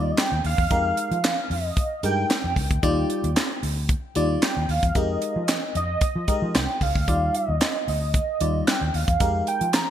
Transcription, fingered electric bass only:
0.00 0.11 D#2 medium
0.32 0.41 D#2 medium
0.44 0.55 D#2 medium
0.58 0.68 E2 medium
0.71 0.91 F2 loud
1.11 1.31 F3 medium
1.50 1.70 F2 medium
2.03 2.23 G2 medium
2.44 2.53 F2 medium
2.56 2.67 C#2 medium
2.71 2.80 D2 medium
2.83 3.03 D#2 medium
3.24 3.33 D#2 loud
3.63 3.93 D2 medium
4.16 4.36 D#2 loud
4.57 4.66 D#2 medium
4.69 4.79 D#2 loud
4.83 4.92 E2 medium
4.95 5.15 F2 loud
5.36 5.56 F3 loud
5.75 5.95 F2 medium
6.16 6.25 F3 medium
6.42 6.52 F3 loud
6.55 6.65 C2 medium
6.81 6.92 C#2 medium
6.95 7.05 D2 medium
7.08 7.28 D#2 loud
7.49 7.58 D#2 loud
7.88 8.18 D2 medium
8.41 8.61 D#2 medium
8.81 8.91 D#2 medium
8.94 9.04 D#2 medium
9.08 9.17 E2 medium
9.20 9.40 F2 medium
9.61 9.81 F3 medium

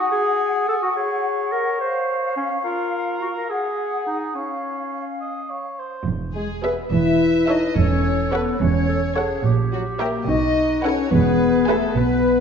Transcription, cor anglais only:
0.00 0.92 G#4 medium
0.96 2.61 C#5 medium
2.64 3.51 A#4 soft
3.50 4.35 G#4 soft
4.35 5.04 C#5 soft
5.21 5.51 D#5 soft
5.50 5.80 C#5 soft
5.79 6.07 C5 soft

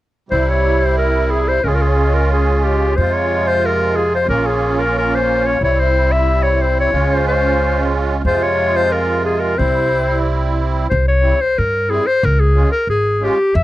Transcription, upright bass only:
0.32 1.61 C2 medium
1.64 2.93 C#2 medium
2.98 4.26 F2 medium
4.29 5.58 A#1 medium
5.61 6.91 C2 medium
6.93 8.23 C#2 medium
8.25 9.55 F2 medium
9.59 10.88 C2 medium
10.92 11.31 C2 medium
11.58 11.97 G2 medium
12.23 12.62 C#2 loud
12.87 13.27 G#1 medium
13.55 13.63 F2 loud

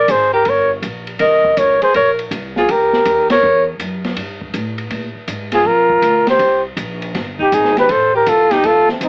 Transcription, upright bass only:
0.08 0.44 G#1 medium
0.46 0.82 G1 medium
0.82 1.19 A#1 medium
1.20 1.56 C2 medium
1.57 1.80 C#2 medium
1.83 muted upright bass stroke soft
1.95 2.30 A#1 medium
2.31 2.67 C2 medium
2.69 3.05 C#2 medium
3.06 3.42 D#2 medium
3.43 3.79 E2 medium
3.80 4.16 F#2 medium
4.16 4.53 G2 medium
4.54 4.90 A2 medium
4.90 5.14 A#2 medium
5.15 muted upright bass stroke soft
5.28 5.64 G#2 medium
5.65 6.01 F2 medium
6.02 6.39 D2 medium
6.39 6.76 C2 medium
6.76 7.13 A#1 medium
7.15 7.51 G1 medium
7.52 7.88 G#1 medium
7.89 8.25 A1 medium
8.27 8.63 C2 medium
8.64 9.00 D#2 medium
9.01 9.09 F2 medium

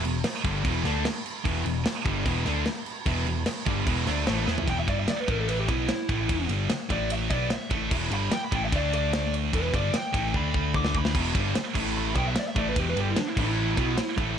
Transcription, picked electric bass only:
0.04 0.23 E1 medium
0.24 muted picked electric bass stroke soft
0.45 0.63 G1 loud
0.65 0.84 E1 medium
0.84 1.03 D2 medium
1.45 1.64 E1 loud
1.65 1.84 E1 medium
1.87 muted picked electric bass stroke soft
2.06 2.24 G1 loud
2.26 2.45 E1 medium
2.46 2.65 D2 loud
3.06 3.25 E1 medium
3.27 3.45 E1 medium
3.47 muted picked electric bass stroke soft
3.67 3.86 G1 loud
3.87 4.06 E1 medium
4.08 4.26 D2 medium
4.28 4.46 A1 medium
4.48 4.66 E2 loud
4.68 4.86 E1 medium
4.88 5.07 G1 medium
5.09 muted picked electric bass stroke soft
5.29 5.66 A1 medium
5.69 5.88 B1 medium
6.09 6.28 A1 medium
6.30 6.48 E1 medium
6.49 6.68 G1 medium
6.70 muted picked electric bass stroke soft
6.90 7.28 A1 medium
7.31 7.50 B1 medium
7.71 7.90 A1 medium
7.91 8.10 E1 medium
8.11 8.30 G1 medium
8.31 muted picked electric bass stroke soft
8.52 8.71 A1 loud
8.72 9.49 D2 medium
9.54 9.72 E1 medium
9.74 9.92 G1 medium
9.93 muted picked electric bass stroke soft
10.14 10.33 A1 medium
10.34 11.11 D2 medium
11.15 11.34 E1 medium
11.35 11.54 G1 medium
11.56 muted picked electric bass stroke soft
11.76 12.13 A1 loud
12.15 12.34 B1 medium
12.56 12.75 A1 medium
12.76 12.95 E1 medium
12.96 13.15 G1 loud
13.17 muted picked electric bass stroke soft
13.37 13.74 A1 loud
13.78 13.96 B1 medium
14.18 14.36 A1 loud

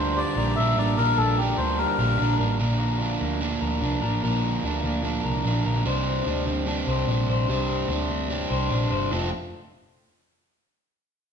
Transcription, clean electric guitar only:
0.00 0.96 A#2 medium
0.00 0.57 D4 medium
0.00 0.37 A#4 medium
0.17 1.77 G3 medium
0.37 0.77 A#4 medium
0.58 1.17 D4 medium
0.78 0.97 A#4 medium
0.97 2.58 A#2 medium
0.97 1.37 A#4 medium
1.18 1.58 D4 medium
1.38 1.98 A#4 medium
1.58 2.19 D4 medium
1.78 2.64 G3 medium
1.98 2.39 A#4 medium
2.20 3.00 D4 medium
2.39 2.59 A#4 medium
2.59 4.22 A#2 medium
2.59 3.60 A#4 medium
2.79 3.19 A#3 medium
3.00 3.41 D4 medium
3.20 4.41 A#3 medium
3.41 3.82 D4 medium
3.61 4.01 A#4 medium
3.82 4.63 D4 medium
4.02 4.22 A#4 medium
4.23 5.86 A#2 medium
4.23 5.23 A#4 medium
4.43 4.83 A#3 medium
4.63 5.04 D4 medium
4.84 5.90 A#3 medium
5.04 5.44 D4 medium
5.24 5.64 A#4 medium
5.44 6.09 D4 medium
5.66 5.86 A#4 medium
5.86 7.48 C3 medium
5.86 6.87 C5 medium
6.06 6.47 C4 medium
6.27 6.66 D4 medium
6.47 7.69 C4 medium
6.68 7.07 D4 medium
6.88 7.29 C5 medium
7.08 7.89 D4 medium
7.29 7.49 C5 medium
7.49 9.12 C3 medium
7.49 8.50 C5 medium
7.70 8.10 C4 medium
7.90 8.29 D4 medium
8.10 9.11 C4 medium
8.30 8.69 D4 medium
8.50 8.91 C5 medium
8.70 9.12 D4 medium
8.91 9.12 C5 medium
9.10 9.27 F3 medium
9.10 9.28 C4 medium
9.10 9.28 F4 medium
9.10 9.29 A4 medium

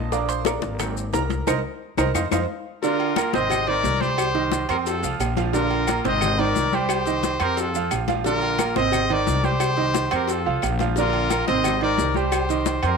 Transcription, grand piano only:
0.12 0.76 F3 medium
0.12 0.76 A#3 medium
0.12 0.77 D4 medium
0.12 0.28 D5 medium
0.12 0.28 F5 medium
0.12 0.28 A#5 medium
0.12 0.28 D6 loud
0.29 0.45 C5 medium
0.29 0.45 C6 loud
0.46 0.93 D5 medium
0.46 0.93 F5 medium
0.46 0.93 A#5 medium
0.46 0.93 D6 medium
0.80 1.02 F#3 medium
0.80 1.02 A#3 soft
0.80 1.02 C4 medium
1.13 1.45 A#4 medium
1.13 1.45 A#5 medium
1.47 1.58 A#4 loud
1.47 1.58 C5 loud
1.47 1.58 D#5 loud
1.98 2.09 A#4 loud
1.98 2.09 C5 loud
1.98 2.09 D#5 loud
2.15 2.26 C5 medium
2.15 2.26 D#5 loud
2.15 2.26 F5 loud
2.32 2.43 C5 loud
2.32 2.43 D#5 medium
2.32 2.43 F5 loud
2.84 3.11 D3 medium
2.84 3.12 D4 medium
2.84 3.12 D5 medium
3.17 3.31 A#3 medium
3.17 3.31 A#4 medium
3.17 3.31 A#5 medium
3.34 3.62 C3 medium
3.34 3.62 C4 medium
3.34 3.62 C5 medium
3.67 3.96 D#3 medium
3.67 3.95 D#4 medium
3.67 3.96 C5 medium
4.01 4.29 G3 medium
4.01 4.29 G4 medium
4.01 4.29 G5 medium
4.35 4.63 D#3 medium
4.35 4.63 D#4 medium
4.35 4.63 D#5 medium
4.69 4.97 C4 medium
4.69 4.97 C5 medium
4.69 4.97 C6 medium
5.03 5.31 F3 medium
5.03 5.31 F4 medium
5.03 5.32 F5 medium
5.37 5.51 F3 medium
5.37 5.51 F4 medium
5.37 5.51 F5 medium
5.53 5.81 D3 medium
5.53 5.82 D4 medium
5.53 5.82 D5 medium
5.87 6.01 A#3 medium
5.87 6.02 A#4 medium
5.87 6.02 A#5 medium
6.05 6.33 C3 loud
6.05 6.33 C4 medium
6.05 6.33 C5 loud
6.39 6.67 D#3 medium
6.39 6.67 D#4 medium
6.39 6.67 C5 medium
6.73 7.01 G3 medium
6.73 7.01 G4 medium
6.73 7.01 G5 medium
7.07 7.35 D#3 medium
7.07 7.35 D#4 medium
7.07 7.35 D#5 medium
7.41 7.69 C4 medium
7.41 7.69 C5 medium
7.41 7.69 C6 medium
7.76 8.03 F3 medium
7.76 8.03 F4 medium
7.76 8.03 F5 medium
8.08 8.22 F3 medium
8.08 8.22 F4 medium
8.08 8.22 F5 medium
8.26 8.53 D3 medium
8.26 8.53 D4 medium
8.26 8.54 D5 medium
8.59 8.73 A#3 medium
8.59 8.74 A#4 medium
8.59 8.74 A#5 medium
8.76 9.04 C3 medium
8.76 9.04 C4 medium
8.76 9.04 C5 loud
9.10 9.38 D#3 medium
9.10 9.38 D#4 medium
9.10 9.38 C5 medium
9.44 9.72 G3 medium
9.44 9.72 G4 medium
9.44 9.72 G5 medium
9.77 10.06 D#3 medium
9.77 10.05 D#4 medium
9.77 10.06 D#5 medium
10.11 10.40 C4 medium
10.11 10.39 C5 medium
10.11 10.40 C6 medium
10.46 10.74 F3 medium
10.46 10.74 F4 medium
10.46 10.74 F5 medium
10.81 10.94 F3 medium
10.81 10.94 F4 medium
10.81 10.95 F5 medium
10.98 11.25 D3 medium
10.98 11.25 D4 medium
10.98 11.25 D5 medium
11.32 11.46 A#3 medium
11.32 11.46 A#4 medium
11.32 11.46 A#5 medium
11.48 11.76 C3 medium
11.48 11.76 C4 medium
11.48 11.76 C5 loud
11.82 12.10 D#3 medium
11.82 12.10 D#4 medium
11.82 12.10 C5 medium
12.15 12.43 G3 medium
12.15 12.43 G4 medium
12.15 12.43 G5 medium
12.50 12.77 D#3 medium
12.50 12.78 D#4 medium
12.50 12.77 D#5 medium
12.83 12.97 C4 medium
12.83 12.97 C5 medium
12.83 12.97 C6 medium

